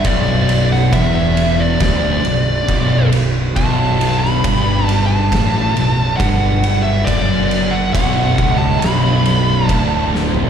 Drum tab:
RD |x-x-x-x-x-x-x-x-|x-x-x-x-x-x-x-x-|x-x-x-x-x-x-x---|
SD |---o----o-------|---o----o-------|--------o-----o-|
FT |----------------|----------------|---------------o|
BD |o---o---o---o---|o---o---o---o---|o---o-o-----o---|